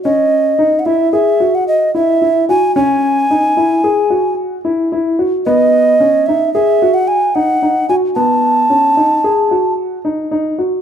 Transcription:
<<
  \new Staff \with { instrumentName = "Ocarina" } { \time 5/4 \key cis \minor \tempo 4 = 111 dis''4~ dis''16. fis''32 e''8 e''8. fis''16 dis''8 e''4 gis''8 | gis''2. r2 | dis''4. e''8 e''8. fis''16 gis''8 fis''4 gis''8 | a''2. r2 | }
  \new Staff \with { instrumentName = "Grand piano" } { \time 5/4 \key cis \minor cis'4 dis'8 e'8 gis'8 fis'4 e'8 e'8 fis'8 | cis'4 dis'8 e'8 gis'8 fis'4 e'8 e'8 fis'8 | b4 cis'8 dis'8 gis'8 fis'4 dis'8 dis'8 fis'8 | b4 cis'8 dis'8 gis'8 fis'4 dis'8 dis'8 fis'8 | }
>>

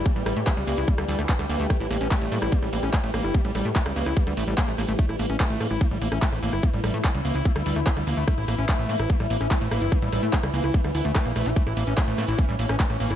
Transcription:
<<
  \new Staff \with { instrumentName = "Acid bass" } { \time 4/4 \tempo 4 = 146 a16 g16 g16 a16 a16 g16 bes16 e'16 a16 g16 g16 a16 bes16 g16 bes16 a16 | a16 e'16 bes16 cis'16 a16 a16 bes16 e'16 a16 g16 bes16 cis'16 a16 a16 bes16 e'16 | a16 g16 g16 a16 a16 g16 bes16 e'16 a16 g16 a16 g16 bes16 a16 bes16 a16 | a16 e'16 bes16 cis'16 a16 a16 bes16 e'16 a16 g16 bes16 cis'16 a16 a16 bes16 e'16 |
a16 g16 g16 a16 a16 g16 bes16 e'16 a16 g16 g16 a16 bes16 g16 bes16 a16 | a16 e'16 bes16 cis'16 a16 a16 bes16 e'16 a16 g16 bes16 cis'16 a16 a16 bes16 e'16 | a16 g16 g16 a16 a16 g16 bes16 e'16 a16 g16 e'16 a16 a16 bes16 a16 e'16 | a16 e'16 bes16 cis'16 a16 a16 bes16 e'16 a16 g16 bes16 cis'16 a16 a16 bes16 e'16 | }
  \new Staff \with { instrumentName = "Synth texture" } { \clef bass \time 4/4 <e g>1~ | <e g>1~ | <e g>1 | <e e'>1~ |
<e e'>1~ | <e e'>1~ | <e e'>1 | cis'1 | }
  \new Staff \with { instrumentName = "Analog synth bass" } { \clef bass \time 4/4 r16 a,,16 a,,16 a,16 r16 cis,16 cis,16 cis,16 r16 d,16 d,16 d,16 r16 d,16 d,16 d,16 | r16 a,,16 a,,16 a,,16 r16 a,,16 a,16 a,,16 r16 a,,16 a,,16 a,,16 r16 a,,16 a,,16 g,,16 | r16 a,,16 a,,16 a,16 r16 cis,16 cis,16 cis,16 r16 d,16 a,,16 a,,16 r16 a,,16 a,,16 a,,16 | r16 a,,16 a,,16 a,,16 r16 a,,16 a,16 a,,16 r16 a,,16 a,,16 a,,16 r16 a,,16 a,,16 g,,16 |
r16 a,,16 a,,16 a,16 r16 cis,16 cis,16 cis,16 r16 d,16 d,16 d,16 r16 d,16 d,16 d,16 | r16 a,,16 a,,16 a,,16 r16 a,,16 a,16 a,,16 r16 a,,16 a,,16 a,,16 r16 a,,16 a,,16 g,,16 | r16 a,,16 a,,16 a,16 r16 cis,16 cis,16 cis,16 r16 d,16 d,16 d,16 r16 bes,,16 bes,,16 bes,,16 | r16 a,,16 a,,16 a,,16 r16 a,,16 a,16 a,,16 r16 a,,16 a,,16 a,,16 r16 a,,16 a,,16 g,,16 | }
  \new DrumStaff \with { instrumentName = "Drums" } \drummode { \time 4/4 <hh bd cymr>16 hh16 <hho ss>16 hh16 <hc hh bd cymr ss>16 hh16 hho16 hh16 <hh bd cymr>16 <hh ss>16 hho16 <hh ss>16 <hc hh bd cymr>16 <hh ss>16 hho16 hh16 | <hh bd cymr ss>16 hh16 <hho ss>16 hh16 <hc hh bd cymr ss>16 hh16 hho16 <hh ss>16 <hh bd cymr>16 <hh ss>16 hho16 <hh ss>16 <hc hh bd cymr>16 hh16 <hho ss>16 hh16 | <hh bd cymr ss>16 hh16 <hho ss>16 hh16 <hc hh bd cymr>16 <hh ss>16 hho16 <hh ss>16 <hh bd cymr>16 <hh ss>16 hho16 hh16 <hc hh bd cymr ss>16 hh16 <hho ss>16 hh16 | <hh bd cymr>16 <hh ss>16 hho16 hh16 <hc hh bd cymr ss>16 hh16 <hho ss>16 hh16 <hh bd cymr ss>16 hh16 hho16 <hh ss>16 <hc hh bd cymr>16 <hh ss>16 hho16 <hh ss>16 |
<hh bd cymr>16 hh16 <hho ss>16 hh16 <hc hh bd cymr ss>16 hh16 hho16 hh16 <hh bd cymr>16 <hh ss>16 hho16 <hh ss>16 <hc hh bd cymr>16 <hh ss>16 hho16 hh16 | <hh bd cymr ss>16 hh16 <hho ss>16 hh16 <hc hh bd cymr ss>16 hh16 hho16 <hh ss>16 <hh bd cymr>16 <hh ss>16 hho16 ss16 <hc hh bd cymr>16 hh16 <hho ss>16 hh16 | <hh bd cymr ss>16 hh16 <hho ss>16 hh16 <hc hh bd cymr>16 <hh ss>16 hho16 ss16 <hh bd cymr>16 <hh ss>16 hho16 hh16 <hc hh bd cymr ss>16 hh16 <hho ss>16 hh16 | <hh bd cymr>16 <hh ss>16 hho16 hh16 <hc hh bd cymr ss>16 hh16 <hho ss>16 hh16 <hh bd cymr ss>16 hh16 hho16 <hh ss>16 <hc hh bd cymr>16 <hh ss>16 hho16 <hh ss>16 | }
>>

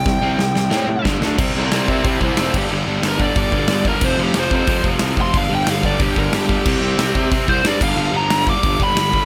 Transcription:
<<
  \new Staff \with { instrumentName = "Lead electric guitar" } { \time 4/4 \key c \major \tempo 4 = 182 g''2. r4 | r8 <bes' d''>8 <bes' d''>8 <bes' d''>8 <e' c''>8 <e' c''>8 <e' c''>8 g'8 | r4 bes'8 d''2 bes'8 | c''8 g'8 c''8 c''4 r4 c'''8 |
f''8 g''8 f''8 d''8 g'8 bes'8 g'4~ | g'2 r8 c''8 d''8 f''8~ | f''8 bes''4 d'''4 b''4. | }
  \new Staff \with { instrumentName = "Distorted electric guitar" } { \clef bass \time 4/4 \key c \major <c g>8 <c g c'>8 <c g>8 <c g>8 <c g c'>8 <c g>8 <g, d g>8 <d a d'>8 | <c g c'>8 <c g c'>8 <c g c'>8 <c g c'>8 <c g c'>8 <c g c'>8 <c g c'>8 <g, d g>8 | <g, d g>8 <g, d g>8 <g, d g>8 <g, d g>8 <g, d g>8 <g, d g>8 <g, d g>8 <g, d g>8 | <f, c f>8 <f, c f>8 <f, c f>8 <f, c f>8 <f, c f>8 <f, c f>8 <f, c f>8 <f, c f>8 |
<g, d g>8 <g, d g>8 <g, d g>8 <g, d g>8 <g, d g>8 <g, d g>8 <g, d g>8 <g, d g>8 | <c g c'>8 <c g c'>8 <c g c'>8 <c g c'>8 <c g c'>8 <c g c'>8 <c g c'>8 <g, d g>8 | <g, d g>8 <g, d g>8 <g, d g>8 <g, d g>8 <g, d g>8 <g, d g>8 <g, d g>8 <g, d g>8 | }
  \new Staff \with { instrumentName = "Picked electric bass" } { \clef bass \time 4/4 \key c \major c,8 c,8 c,8 c,8 a,8 a,8 g,,8 d,8 | c,8 c,8 c,8 c8 c8 c,8 f,,8 g,,8 | g,,8 g,,8 g,,4 g,,8 g,,8 g,,4 | f,,8 f,,8 f,,8 f,8 f,8 f,,8 c,8 f,,8 |
g,,8 g,,8 g,,4 g,,8 g,,8 g,,4 | c,8 c,8 c,8 c8 c8 c,8 g,8 g,,8 | g,,8 g,,8 g,,4 g,,8 g,,8 g,,4 | }
  \new DrumStaff \with { instrumentName = "Drums" } \drummode { \time 4/4 <bd sn>4 sn8 sn8 sn4 <bd sn>8 sn8 | <cymc bd>4 <hho sn>8 bd8 <hho bd>8 bd8 <hho sn>8 <cymc bd>8 | r4 <hho sn>8 bd8 <hho bd>8 bd8 <hho sn>8 bd8 | <cymc bd>4 <hho sn>8 bd8 <hho bd>8 bd8 <hho sn>8 bd8 |
<hho bd>4 <hho sn>8 bd8 <hho bd>8 bd8 <hho sn>8 bd8 | <cymc bd>4 <hho sn>8 bd8 <hho bd>8 bd8 <hho sn>8 <cymc bd>8 | r4 <hho sn>8 bd8 <hho bd>8 bd8 <hho sn>8 bd8 | }
>>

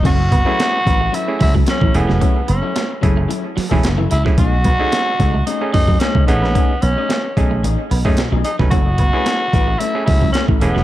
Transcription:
<<
  \new Staff \with { instrumentName = "Clav" } { \time 4/4 \key fis \dorian \tempo 4 = 111 r8. <a cis' e' gis'>8. r8. <a cis' e' gis'>8 r8. <a cis' e' gis'>8~ | <a cis' e' gis'>16 r4 r16 <a cis' e' gis'>8 r8. <a cis' e' gis'>16 r8 <e' gis'>16 <a cis' e' gis'>16 | r8. <a cis' dis' gis'>8. r8. <a cis' dis' gis'>8 r8. <a cis' dis' gis'>8~ | <a cis' dis' gis'>16 r4 r16 <a cis' dis' gis'>8 r8. <a cis' dis' gis'>16 r8 <dis' gis'>16 <a cis' dis' b'>16 |
r8. <a cis' e' gis'>8. r8. <a cis' e' gis'>8 r8. <a cis' e' gis'>8 | }
  \new Staff \with { instrumentName = "Tenor saxophone" } { \time 4/4 \key fis \dorian fis'2 e'8 e'8 cis'8 b8~ | b8 cis'4 r2 e'8 | fis'2 dis'8 dis'8 cis'8 b8~ | b8 cis'4 r2 dis'8 |
fis'2 e'8 e'8 cis'8 b8 | }
  \new Staff \with { instrumentName = "Clean electric guitar" } { \time 4/4 \key fis \dorian <fis cis' e' a'>16 r8 <fis cis' e' b'>16 r8 <fis cis' e' b'>16 r16 <fis cis' e' a'>16 r8 <fis cis' e' a'>16 <fis cis' e' a'>8 r8 | <fis cis' e' a'>16 r8 <fis cis' e' a'>16 r8 <fis cis' e' a'>16 r16 <fis cis' e' a'>16 r8 <fis cis' e' a'>16 r16 <fis cis' e' a'>16 r8 | <a cis' dis' gis'>16 r8 <a cis' dis' a'>16 r8 <a cis' dis' a'>16 r16 <a cis' dis' gis'>16 r8 <a cis' dis' gis'>16 <a cis' dis' gis'>8 r8 | <a cis' dis' gis'>16 r8 <a cis' dis' gis'>16 r8 <a cis' dis' gis'>16 r16 <a cis' dis' gis'>16 r8 <a cis' dis' gis'>16 r16 <a cis' dis' gis'>16 r8 |
<a cis' e' a'>16 r8 <a cis' e' b'>16 r8 <a cis' e' b'>16 r16 <a cis' e' a'>16 r8 <a cis' e' a'>16 <a cis' e' a'>8 r8 | }
  \new Staff \with { instrumentName = "Clean electric guitar" } { \time 4/4 \key fis \dorian cis'16 r16 b16 r16 a16 r8 a16 r8 fis16 fis16 r16 e16 r16 fis16 | cis'16 r16 b16 r16 a16 r8 a16 r8 fis16 fis16 r16 e16 r16 fis16 | cis'16 r16 b16 r16 a16 r8 a16 r8 fis16 fis16 r16 a16 r16 b16 | cis'16 r16 b16 r16 a16 r8 a16 r8 b16 a16 r16 fis16 r16 fis16 |
cis'16 r16 b16 r16 a16 r8 a16 r8 fis16 fis16 r16 e16 r16 fis16 | }
  \new Staff \with { instrumentName = "Slap bass" } { \clef bass \time 4/4 \key fis \dorian fis,,8 fis,,16 r8. a,,8 r8 cis,8 r16 a,,16 e,,16 eis,,16 | r8 fis,,16 r8. fis,,8 r8. e,,16 fis,,8 cis,16 r16 | b,,8 b,,16 r8. cis,8 r8 fis,8 r16 cis,16 a,,16 ais,,16 | r8 b,,16 r8. b,,8 a,,16 r16 b,,16 fis,16 b,16 b,,16 r16 eis,,16 |
fis,,8 fis,,16 r8. a,,8 r8 cis,8 r16 a,,16 e,,16 eis,,16 | }
  \new DrumStaff \with { instrumentName = "Drums" } \drummode { \time 4/4 <cymc hh bd>8 <hh bd>8 <hh sn>8 <hh bd sn>8 hh8 <hho bd sn>16 bd16 <hh sn>16 bd16 hh16 sn16 | <hh bd>8 hh8 <hh sn>8 <hh bd>8 hh8 <hho sn>16 bd16 <hh sn>8 hh16 <bd sn>16 | <hh bd>8 <hh bd>8 <hh sn>8 <hh bd sn>8 hh8 <hho bd sn>16 bd16 <hh sn>16 bd16 hh16 sn16 | <hh bd>8 hh8 <hh sn>8 <hh bd>8 hh8 hho16 bd16 <hh sn>8 hh16 <bd sn>16 |
<hh bd>8 <hh bd>8 <hh sn>8 <hh bd sn>8 hh8 <hho bd sn>16 bd16 <hh sn>16 bd16 hh16 sn16 | }
>>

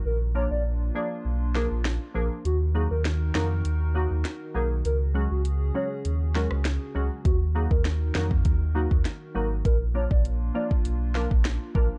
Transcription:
<<
  \new Staff \with { instrumentName = "Soft synth lead" } { \time 4/4 \key ees \minor \tempo 4 = 100 bes'16 r16 des''16 d''16 r8 d''16 r8. bes'16 r8. bes'16 r16 | ges'16 r16 aes'16 bes'16 r8 bes'16 r8. ges'16 r8. bes'16 r16 | bes'16 r16 aes'16 ges'16 r8 des''16 r8. bes'16 r8. aes'16 r16 | ges'16 r16 aes'16 bes'16 r8 bes'16 r8. ges'16 r8. bes'16 r16 |
bes'16 r16 des''16 d''16 r8 d''16 r8. bes'16 r8. bes'16 r16 | }
  \new Staff \with { instrumentName = "Analog synth pad" } { \time 4/4 \key ees \minor << { <bes f'>1 | <ees ees' bes'>1 | <des des' aes'>1 | <ees ees' bes'>1 |
<bes f'>1 | } \\ { d'1 | ges'1~ | ges'1~ | ges'1 |
d'1 | } >> }
  \new Staff \with { instrumentName = "Synth pluck" } { \time 4/4 \key ees \minor r8 <f bes d' f'>8 r8 <f bes d' aes'>8 r8 <f bes d' aes'>8 r8 <f bes d' aes'>8 | r8 <ges bes ees' ges'>8 r8 <ges bes ees' ges'>8 r8 <ges bes ees' ges'>8 r8 <ges bes ees' aes'>8 | r8 <ges aes des' ges'>8 r8 <ges aes des' ges'>8 r8 <ges aes des' ges'>8 r8 <ges aes des' ges'>8 | r8 <ges bes ees' ges'>8 r8 <ges bes ees' ges'>8 r8 <ges bes ees' ges'>8 r8 <ges bes ees' ges'>8 |
r8 <f bes d' f'>8 r8 <f bes d' f'>8 r8 <f bes d' f'>8 r8 <f bes d' f'>8 | }
  \new Staff \with { instrumentName = "Sub bass" } { \clef bass \time 4/4 \key ees \minor bes,,8. bes,,8. r8 ces,8. bes,,8 r16 bes,,16 r16 | ees,8. ees,8. f,8 ees,8. ees,16 r8 ces,8 | des,8. des,8. r8 ees,8. des,8 r16 des,16 r16 | ees,8. ees,8. f,8 ees,8. ees,16 r8 aes,,8 |
bes,,8. bes,,8. r8 ces,8. bes,,8 r16 bes,,16 r16 | }
  \new DrumStaff \with { instrumentName = "Drums" } \drummode { \time 4/4 r4 r4 r8 sn8 sn4 | hh4 <hh sn>8 sn8 hh4 <hh sn>4 | hh4 hh4 hh8 sn16 ss16 <hh sn>4 | <hh bd>8. bd16 <hh sn>8 sn16 bd16 <hh bd>8. bd16 <hh sn>4 |
<hh bd>8. bd16 hh8. bd16 hh8 sn16 bd16 <hh sn>8 bd8 | }
>>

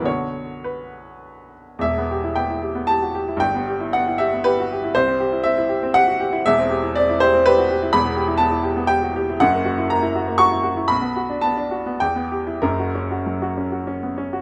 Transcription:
\new Staff \with { instrumentName = "Upright piano" } { \time 3/4 \key b \minor \tempo 4 = 116 << { cis''4 b'4. r8 | \key e \minor e''4 g''4 a''4 | g''4 fis''8 e''8 b'4 | c''4 e''4 fis''4 |
e''4 d''8 c''8 b'4 | \key fis \phrygian b''4 a''4 g''4 | fis''4 ais''4 cis'''4 | b''4 a''4 g''4 |
ais'2 r4 | } \\ { <b,, d b fis'>2. | <e,, e,>16 b16 g'16 e'16 b16 e'16 g'16 b16 g'16 fis'16 g'16 e'16 | <g,, g,>16 b16 g'16 e'16 b16 e'16 g'16 b16 g'16 fis'16 g'16 e'16 | c,16 c'16 g'16 e'16 c'16 e'16 g'16 c'16 g'16 fis'16 g'16 e'16 |
<e,, e,>16 c'16 g'16 e'16 c'16 e'16 g'16 c'16 g'16 fis'16 g'16 e'16 | <e,, e,>16 b16 g'16 e'16 b16 e'16 g'16 b16 g'16 fis'16 g'16 e'16 | <fis,, fis,>16 ais16 fis'16 e'16 ais16 e'16 fis'16 ais16 fis'16 e'16 fis'16 e'16 | b,,16 b16 fis'16 d'16 b16 d'16 fis'16 b16 e,16 b16 g'16 e'16 |
<fis,, fis,>16 fis'16 cis'16 fis'16 fis16 fis'16 cis'16 fis'16 cis'16 b16 cis'16 fis'16 | } >> }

